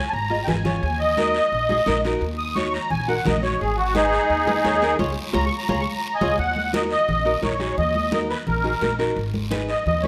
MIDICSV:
0, 0, Header, 1, 5, 480
1, 0, Start_track
1, 0, Key_signature, -6, "minor"
1, 0, Tempo, 347423
1, 1147, Time_signature, 4, 2, 24, 8
1, 13921, End_track
2, 0, Start_track
2, 0, Title_t, "Accordion"
2, 0, Program_c, 0, 21
2, 0, Note_on_c, 0, 80, 90
2, 119, Note_on_c, 0, 81, 61
2, 156, Note_off_c, 0, 81, 0
2, 176, Note_off_c, 0, 80, 0
2, 183, Note_on_c, 0, 82, 102
2, 608, Note_on_c, 0, 79, 53
2, 643, Note_off_c, 0, 79, 0
2, 650, Note_off_c, 0, 82, 0
2, 665, Note_on_c, 0, 80, 81
2, 1115, Note_off_c, 0, 80, 0
2, 1135, Note_on_c, 0, 80, 86
2, 1369, Note_on_c, 0, 75, 104
2, 1373, Note_off_c, 0, 80, 0
2, 2773, Note_off_c, 0, 75, 0
2, 3294, Note_on_c, 0, 87, 101
2, 3528, Note_on_c, 0, 85, 86
2, 3532, Note_off_c, 0, 87, 0
2, 3768, Note_off_c, 0, 85, 0
2, 3768, Note_on_c, 0, 82, 82
2, 4008, Note_off_c, 0, 82, 0
2, 4017, Note_on_c, 0, 80, 103
2, 4253, Note_off_c, 0, 80, 0
2, 4257, Note_on_c, 0, 78, 90
2, 4493, Note_off_c, 0, 78, 0
2, 4502, Note_on_c, 0, 75, 79
2, 4734, Note_on_c, 0, 73, 98
2, 4735, Note_off_c, 0, 75, 0
2, 4971, Note_off_c, 0, 73, 0
2, 4975, Note_on_c, 0, 68, 93
2, 5207, Note_on_c, 0, 66, 93
2, 5212, Note_off_c, 0, 68, 0
2, 5447, Note_off_c, 0, 66, 0
2, 5448, Note_on_c, 0, 63, 105
2, 5463, Note_on_c, 0, 68, 122
2, 6839, Note_off_c, 0, 63, 0
2, 6858, Note_off_c, 0, 68, 0
2, 7371, Note_on_c, 0, 82, 104
2, 7531, Note_off_c, 0, 82, 0
2, 7538, Note_on_c, 0, 85, 91
2, 7695, Note_off_c, 0, 85, 0
2, 7705, Note_on_c, 0, 82, 88
2, 7844, Note_off_c, 0, 82, 0
2, 7865, Note_on_c, 0, 82, 96
2, 8016, Note_on_c, 0, 85, 87
2, 8018, Note_off_c, 0, 82, 0
2, 8174, Note_off_c, 0, 85, 0
2, 8179, Note_on_c, 0, 82, 98
2, 8324, Note_off_c, 0, 82, 0
2, 8345, Note_on_c, 0, 82, 80
2, 8490, Note_on_c, 0, 75, 91
2, 8498, Note_off_c, 0, 82, 0
2, 8500, Note_on_c, 0, 80, 96
2, 8793, Note_off_c, 0, 75, 0
2, 8811, Note_off_c, 0, 80, 0
2, 8831, Note_on_c, 0, 78, 114
2, 9272, Note_off_c, 0, 78, 0
2, 9321, Note_on_c, 0, 75, 98
2, 9424, Note_off_c, 0, 75, 0
2, 9556, Note_on_c, 0, 75, 105
2, 10219, Note_off_c, 0, 75, 0
2, 10274, Note_on_c, 0, 73, 75
2, 10715, Note_off_c, 0, 73, 0
2, 10748, Note_on_c, 0, 75, 100
2, 11192, Note_off_c, 0, 75, 0
2, 11224, Note_on_c, 0, 75, 97
2, 11332, Note_off_c, 0, 75, 0
2, 11472, Note_on_c, 0, 71, 79
2, 11578, Note_off_c, 0, 71, 0
2, 11705, Note_on_c, 0, 70, 90
2, 12374, Note_off_c, 0, 70, 0
2, 13387, Note_on_c, 0, 75, 90
2, 13602, Note_off_c, 0, 75, 0
2, 13622, Note_on_c, 0, 75, 96
2, 13855, Note_on_c, 0, 73, 81
2, 13871, Note_off_c, 0, 75, 0
2, 13921, Note_off_c, 0, 73, 0
2, 13921, End_track
3, 0, Start_track
3, 0, Title_t, "Nylon-string guitar"
3, 0, Program_c, 1, 24
3, 416, Note_on_c, 1, 65, 70
3, 424, Note_on_c, 1, 68, 61
3, 428, Note_on_c, 1, 75, 78
3, 506, Note_off_c, 1, 65, 0
3, 509, Note_off_c, 1, 68, 0
3, 512, Note_off_c, 1, 75, 0
3, 651, Note_on_c, 1, 65, 75
3, 660, Note_on_c, 1, 68, 69
3, 665, Note_on_c, 1, 71, 77
3, 744, Note_off_c, 1, 65, 0
3, 747, Note_off_c, 1, 68, 0
3, 750, Note_off_c, 1, 71, 0
3, 890, Note_on_c, 1, 65, 71
3, 899, Note_on_c, 1, 68, 61
3, 907, Note_on_c, 1, 73, 74
3, 1138, Note_off_c, 1, 65, 0
3, 1143, Note_off_c, 1, 68, 0
3, 1147, Note_off_c, 1, 73, 0
3, 1620, Note_on_c, 1, 63, 74
3, 1626, Note_on_c, 1, 66, 66
3, 1630, Note_on_c, 1, 70, 78
3, 1876, Note_off_c, 1, 63, 0
3, 1877, Note_off_c, 1, 66, 0
3, 1880, Note_off_c, 1, 70, 0
3, 2335, Note_on_c, 1, 63, 87
3, 2340, Note_on_c, 1, 66, 80
3, 2348, Note_on_c, 1, 68, 93
3, 2424, Note_off_c, 1, 63, 0
3, 2427, Note_off_c, 1, 66, 0
3, 2430, Note_off_c, 1, 68, 0
3, 2573, Note_on_c, 1, 63, 98
3, 2579, Note_on_c, 1, 66, 79
3, 2589, Note_on_c, 1, 70, 99
3, 2664, Note_off_c, 1, 63, 0
3, 2665, Note_off_c, 1, 66, 0
3, 2671, Note_off_c, 1, 70, 0
3, 2831, Note_on_c, 1, 63, 83
3, 2832, Note_on_c, 1, 66, 81
3, 2841, Note_on_c, 1, 70, 101
3, 3080, Note_off_c, 1, 63, 0
3, 3080, Note_off_c, 1, 66, 0
3, 3085, Note_off_c, 1, 70, 0
3, 3532, Note_on_c, 1, 63, 68
3, 3538, Note_on_c, 1, 66, 66
3, 3550, Note_on_c, 1, 73, 82
3, 3790, Note_off_c, 1, 63, 0
3, 3794, Note_off_c, 1, 66, 0
3, 3797, Note_off_c, 1, 73, 0
3, 4252, Note_on_c, 1, 63, 71
3, 4257, Note_on_c, 1, 66, 65
3, 4269, Note_on_c, 1, 70, 79
3, 4342, Note_off_c, 1, 63, 0
3, 4346, Note_off_c, 1, 66, 0
3, 4348, Note_off_c, 1, 70, 0
3, 4493, Note_on_c, 1, 63, 82
3, 4500, Note_on_c, 1, 66, 73
3, 4507, Note_on_c, 1, 70, 87
3, 4582, Note_off_c, 1, 63, 0
3, 4586, Note_off_c, 1, 66, 0
3, 4588, Note_off_c, 1, 70, 0
3, 4727, Note_on_c, 1, 63, 67
3, 4733, Note_on_c, 1, 66, 67
3, 4739, Note_on_c, 1, 73, 79
3, 4976, Note_off_c, 1, 63, 0
3, 4976, Note_off_c, 1, 66, 0
3, 4981, Note_off_c, 1, 73, 0
3, 5449, Note_on_c, 1, 63, 73
3, 5456, Note_on_c, 1, 68, 63
3, 5467, Note_on_c, 1, 71, 81
3, 5708, Note_off_c, 1, 63, 0
3, 5712, Note_off_c, 1, 68, 0
3, 5714, Note_off_c, 1, 71, 0
3, 6169, Note_on_c, 1, 63, 83
3, 6178, Note_on_c, 1, 68, 80
3, 6182, Note_on_c, 1, 71, 102
3, 6260, Note_off_c, 1, 63, 0
3, 6262, Note_off_c, 1, 68, 0
3, 6266, Note_off_c, 1, 71, 0
3, 6411, Note_on_c, 1, 63, 88
3, 6418, Note_on_c, 1, 68, 85
3, 6422, Note_on_c, 1, 73, 98
3, 6501, Note_off_c, 1, 63, 0
3, 6503, Note_off_c, 1, 68, 0
3, 6503, Note_off_c, 1, 73, 0
3, 6657, Note_on_c, 1, 63, 93
3, 6662, Note_on_c, 1, 68, 81
3, 6668, Note_on_c, 1, 70, 97
3, 6877, Note_off_c, 1, 68, 0
3, 6889, Note_off_c, 1, 63, 0
3, 6890, Note_off_c, 1, 70, 0
3, 6894, Note_on_c, 1, 65, 97
3, 6894, Note_on_c, 1, 68, 101
3, 6896, Note_on_c, 1, 73, 99
3, 7049, Note_off_c, 1, 73, 0
3, 7050, Note_off_c, 1, 68, 0
3, 7052, Note_off_c, 1, 65, 0
3, 7362, Note_on_c, 1, 65, 101
3, 7368, Note_on_c, 1, 68, 97
3, 7374, Note_on_c, 1, 73, 98
3, 7524, Note_off_c, 1, 65, 0
3, 7525, Note_off_c, 1, 68, 0
3, 7526, Note_off_c, 1, 73, 0
3, 7855, Note_on_c, 1, 65, 103
3, 7861, Note_on_c, 1, 68, 103
3, 7867, Note_on_c, 1, 73, 107
3, 8013, Note_off_c, 1, 65, 0
3, 8013, Note_off_c, 1, 68, 0
3, 8013, Note_off_c, 1, 73, 0
3, 8583, Note_on_c, 1, 65, 105
3, 8584, Note_on_c, 1, 68, 111
3, 8590, Note_on_c, 1, 73, 104
3, 8736, Note_off_c, 1, 65, 0
3, 8736, Note_off_c, 1, 68, 0
3, 8738, Note_off_c, 1, 73, 0
3, 9294, Note_on_c, 1, 63, 64
3, 9300, Note_on_c, 1, 66, 62
3, 9307, Note_on_c, 1, 70, 77
3, 9549, Note_off_c, 1, 63, 0
3, 9553, Note_off_c, 1, 66, 0
3, 9554, Note_off_c, 1, 70, 0
3, 10015, Note_on_c, 1, 63, 68
3, 10021, Note_on_c, 1, 66, 64
3, 10027, Note_on_c, 1, 70, 72
3, 10102, Note_off_c, 1, 63, 0
3, 10105, Note_off_c, 1, 66, 0
3, 10108, Note_off_c, 1, 70, 0
3, 10244, Note_on_c, 1, 63, 68
3, 10253, Note_on_c, 1, 66, 62
3, 10258, Note_on_c, 1, 70, 77
3, 10338, Note_off_c, 1, 63, 0
3, 10340, Note_off_c, 1, 66, 0
3, 10343, Note_off_c, 1, 70, 0
3, 10491, Note_on_c, 1, 63, 67
3, 10497, Note_on_c, 1, 66, 63
3, 10500, Note_on_c, 1, 68, 70
3, 10749, Note_off_c, 1, 63, 0
3, 10751, Note_off_c, 1, 66, 0
3, 10753, Note_off_c, 1, 68, 0
3, 11208, Note_on_c, 1, 63, 69
3, 11216, Note_on_c, 1, 66, 64
3, 11226, Note_on_c, 1, 70, 73
3, 11468, Note_off_c, 1, 63, 0
3, 11470, Note_off_c, 1, 66, 0
3, 11476, Note_off_c, 1, 70, 0
3, 11933, Note_on_c, 1, 63, 68
3, 11942, Note_on_c, 1, 66, 64
3, 11943, Note_on_c, 1, 68, 76
3, 12023, Note_off_c, 1, 63, 0
3, 12024, Note_off_c, 1, 66, 0
3, 12027, Note_off_c, 1, 68, 0
3, 12175, Note_on_c, 1, 63, 68
3, 12182, Note_on_c, 1, 66, 63
3, 12187, Note_on_c, 1, 70, 81
3, 12264, Note_off_c, 1, 63, 0
3, 12266, Note_off_c, 1, 66, 0
3, 12269, Note_off_c, 1, 70, 0
3, 12416, Note_on_c, 1, 63, 80
3, 12425, Note_on_c, 1, 66, 75
3, 12426, Note_on_c, 1, 70, 91
3, 12661, Note_off_c, 1, 63, 0
3, 12663, Note_off_c, 1, 66, 0
3, 12665, Note_off_c, 1, 70, 0
3, 13130, Note_on_c, 1, 63, 86
3, 13136, Note_on_c, 1, 68, 73
3, 13145, Note_on_c, 1, 71, 91
3, 13390, Note_off_c, 1, 63, 0
3, 13392, Note_off_c, 1, 68, 0
3, 13397, Note_off_c, 1, 71, 0
3, 13862, Note_on_c, 1, 63, 65
3, 13871, Note_on_c, 1, 68, 62
3, 13879, Note_on_c, 1, 71, 73
3, 13921, Note_off_c, 1, 63, 0
3, 13921, Note_off_c, 1, 68, 0
3, 13921, Note_off_c, 1, 71, 0
3, 13921, End_track
4, 0, Start_track
4, 0, Title_t, "Upright bass"
4, 0, Program_c, 2, 32
4, 182, Note_on_c, 2, 32, 92
4, 568, Note_off_c, 2, 32, 0
4, 659, Note_on_c, 2, 32, 89
4, 1046, Note_off_c, 2, 32, 0
4, 1143, Note_on_c, 2, 39, 100
4, 1912, Note_off_c, 2, 39, 0
4, 2101, Note_on_c, 2, 34, 87
4, 2486, Note_off_c, 2, 34, 0
4, 2574, Note_on_c, 2, 34, 88
4, 2962, Note_off_c, 2, 34, 0
4, 3053, Note_on_c, 2, 39, 100
4, 3825, Note_off_c, 2, 39, 0
4, 4026, Note_on_c, 2, 34, 90
4, 4409, Note_off_c, 2, 34, 0
4, 4502, Note_on_c, 2, 34, 90
4, 4886, Note_off_c, 2, 34, 0
4, 4991, Note_on_c, 2, 32, 98
4, 5755, Note_off_c, 2, 32, 0
4, 5935, Note_on_c, 2, 39, 94
4, 6321, Note_off_c, 2, 39, 0
4, 6419, Note_on_c, 2, 39, 87
4, 6803, Note_off_c, 2, 39, 0
4, 6897, Note_on_c, 2, 37, 109
4, 7078, Note_off_c, 2, 37, 0
4, 7380, Note_on_c, 2, 37, 96
4, 7559, Note_off_c, 2, 37, 0
4, 7861, Note_on_c, 2, 37, 101
4, 8039, Note_off_c, 2, 37, 0
4, 8583, Note_on_c, 2, 37, 97
4, 8760, Note_off_c, 2, 37, 0
4, 8821, Note_on_c, 2, 39, 91
4, 9589, Note_off_c, 2, 39, 0
4, 9786, Note_on_c, 2, 34, 89
4, 10168, Note_off_c, 2, 34, 0
4, 10262, Note_on_c, 2, 34, 90
4, 10646, Note_off_c, 2, 34, 0
4, 10746, Note_on_c, 2, 39, 99
4, 11513, Note_off_c, 2, 39, 0
4, 11702, Note_on_c, 2, 34, 89
4, 12087, Note_off_c, 2, 34, 0
4, 12181, Note_on_c, 2, 34, 90
4, 12566, Note_off_c, 2, 34, 0
4, 12660, Note_on_c, 2, 32, 99
4, 13431, Note_off_c, 2, 32, 0
4, 13622, Note_on_c, 2, 39, 84
4, 13921, Note_off_c, 2, 39, 0
4, 13921, End_track
5, 0, Start_track
5, 0, Title_t, "Drums"
5, 188, Note_on_c, 9, 74, 64
5, 326, Note_off_c, 9, 74, 0
5, 660, Note_on_c, 9, 64, 85
5, 669, Note_on_c, 9, 73, 75
5, 798, Note_off_c, 9, 64, 0
5, 807, Note_off_c, 9, 73, 0
5, 899, Note_on_c, 9, 64, 81
5, 904, Note_on_c, 9, 73, 60
5, 1037, Note_off_c, 9, 64, 0
5, 1042, Note_off_c, 9, 73, 0
5, 1150, Note_on_c, 9, 74, 69
5, 1288, Note_off_c, 9, 74, 0
5, 1618, Note_on_c, 9, 63, 84
5, 1629, Note_on_c, 9, 73, 76
5, 1756, Note_off_c, 9, 63, 0
5, 1767, Note_off_c, 9, 73, 0
5, 1858, Note_on_c, 9, 73, 64
5, 1996, Note_off_c, 9, 73, 0
5, 2106, Note_on_c, 9, 74, 75
5, 2244, Note_off_c, 9, 74, 0
5, 2336, Note_on_c, 9, 63, 75
5, 2474, Note_off_c, 9, 63, 0
5, 2575, Note_on_c, 9, 63, 84
5, 2589, Note_on_c, 9, 73, 73
5, 2714, Note_off_c, 9, 63, 0
5, 2727, Note_off_c, 9, 73, 0
5, 2828, Note_on_c, 9, 73, 71
5, 2966, Note_off_c, 9, 73, 0
5, 3065, Note_on_c, 9, 74, 70
5, 3203, Note_off_c, 9, 74, 0
5, 3530, Note_on_c, 9, 63, 86
5, 3549, Note_on_c, 9, 73, 75
5, 3668, Note_off_c, 9, 63, 0
5, 3687, Note_off_c, 9, 73, 0
5, 3788, Note_on_c, 9, 73, 69
5, 3926, Note_off_c, 9, 73, 0
5, 4012, Note_on_c, 9, 64, 64
5, 4021, Note_on_c, 9, 74, 73
5, 4151, Note_off_c, 9, 64, 0
5, 4159, Note_off_c, 9, 74, 0
5, 4497, Note_on_c, 9, 63, 84
5, 4497, Note_on_c, 9, 64, 83
5, 4511, Note_on_c, 9, 73, 72
5, 4635, Note_off_c, 9, 63, 0
5, 4635, Note_off_c, 9, 64, 0
5, 4649, Note_off_c, 9, 73, 0
5, 4751, Note_on_c, 9, 73, 65
5, 4890, Note_off_c, 9, 73, 0
5, 4989, Note_on_c, 9, 74, 74
5, 5128, Note_off_c, 9, 74, 0
5, 5454, Note_on_c, 9, 63, 91
5, 5466, Note_on_c, 9, 73, 79
5, 5593, Note_off_c, 9, 63, 0
5, 5604, Note_off_c, 9, 73, 0
5, 5702, Note_on_c, 9, 73, 67
5, 5840, Note_off_c, 9, 73, 0
5, 5946, Note_on_c, 9, 74, 74
5, 6084, Note_off_c, 9, 74, 0
5, 6180, Note_on_c, 9, 63, 82
5, 6318, Note_off_c, 9, 63, 0
5, 6422, Note_on_c, 9, 73, 70
5, 6424, Note_on_c, 9, 63, 88
5, 6560, Note_off_c, 9, 73, 0
5, 6562, Note_off_c, 9, 63, 0
5, 6661, Note_on_c, 9, 73, 70
5, 6799, Note_off_c, 9, 73, 0
5, 6897, Note_on_c, 9, 63, 97
5, 6906, Note_on_c, 9, 74, 103
5, 7035, Note_off_c, 9, 63, 0
5, 7045, Note_off_c, 9, 74, 0
5, 7380, Note_on_c, 9, 63, 105
5, 7384, Note_on_c, 9, 74, 109
5, 7518, Note_off_c, 9, 63, 0
5, 7522, Note_off_c, 9, 74, 0
5, 7862, Note_on_c, 9, 63, 102
5, 8000, Note_off_c, 9, 63, 0
5, 8581, Note_on_c, 9, 74, 92
5, 8583, Note_on_c, 9, 63, 97
5, 8719, Note_off_c, 9, 74, 0
5, 8721, Note_off_c, 9, 63, 0
5, 8825, Note_on_c, 9, 63, 31
5, 8825, Note_on_c, 9, 74, 67
5, 8963, Note_off_c, 9, 74, 0
5, 8964, Note_off_c, 9, 63, 0
5, 9064, Note_on_c, 9, 63, 71
5, 9202, Note_off_c, 9, 63, 0
5, 9311, Note_on_c, 9, 63, 90
5, 9311, Note_on_c, 9, 73, 76
5, 9449, Note_off_c, 9, 63, 0
5, 9449, Note_off_c, 9, 73, 0
5, 9541, Note_on_c, 9, 73, 68
5, 9680, Note_off_c, 9, 73, 0
5, 9785, Note_on_c, 9, 74, 67
5, 9791, Note_on_c, 9, 63, 29
5, 9791, Note_on_c, 9, 64, 71
5, 9924, Note_off_c, 9, 74, 0
5, 9929, Note_off_c, 9, 63, 0
5, 9929, Note_off_c, 9, 64, 0
5, 10263, Note_on_c, 9, 73, 74
5, 10264, Note_on_c, 9, 63, 80
5, 10401, Note_off_c, 9, 73, 0
5, 10402, Note_off_c, 9, 63, 0
5, 10501, Note_on_c, 9, 73, 60
5, 10640, Note_off_c, 9, 73, 0
5, 10747, Note_on_c, 9, 63, 30
5, 10747, Note_on_c, 9, 64, 69
5, 10749, Note_on_c, 9, 74, 66
5, 10885, Note_off_c, 9, 63, 0
5, 10885, Note_off_c, 9, 64, 0
5, 10887, Note_off_c, 9, 74, 0
5, 10982, Note_on_c, 9, 63, 66
5, 11120, Note_off_c, 9, 63, 0
5, 11220, Note_on_c, 9, 63, 90
5, 11229, Note_on_c, 9, 73, 65
5, 11358, Note_off_c, 9, 63, 0
5, 11367, Note_off_c, 9, 73, 0
5, 11474, Note_on_c, 9, 73, 62
5, 11612, Note_off_c, 9, 73, 0
5, 11698, Note_on_c, 9, 63, 30
5, 11698, Note_on_c, 9, 64, 71
5, 11711, Note_on_c, 9, 74, 67
5, 11836, Note_off_c, 9, 63, 0
5, 11836, Note_off_c, 9, 64, 0
5, 11849, Note_off_c, 9, 74, 0
5, 12179, Note_on_c, 9, 63, 82
5, 12188, Note_on_c, 9, 73, 75
5, 12317, Note_off_c, 9, 63, 0
5, 12327, Note_off_c, 9, 73, 0
5, 12430, Note_on_c, 9, 73, 64
5, 12568, Note_off_c, 9, 73, 0
5, 12661, Note_on_c, 9, 63, 33
5, 12664, Note_on_c, 9, 74, 72
5, 12800, Note_off_c, 9, 63, 0
5, 12802, Note_off_c, 9, 74, 0
5, 12901, Note_on_c, 9, 63, 74
5, 13039, Note_off_c, 9, 63, 0
5, 13144, Note_on_c, 9, 63, 87
5, 13147, Note_on_c, 9, 73, 72
5, 13282, Note_off_c, 9, 63, 0
5, 13285, Note_off_c, 9, 73, 0
5, 13382, Note_on_c, 9, 73, 62
5, 13520, Note_off_c, 9, 73, 0
5, 13620, Note_on_c, 9, 74, 67
5, 13631, Note_on_c, 9, 63, 32
5, 13631, Note_on_c, 9, 64, 76
5, 13758, Note_off_c, 9, 74, 0
5, 13769, Note_off_c, 9, 63, 0
5, 13769, Note_off_c, 9, 64, 0
5, 13863, Note_on_c, 9, 63, 78
5, 13921, Note_off_c, 9, 63, 0
5, 13921, End_track
0, 0, End_of_file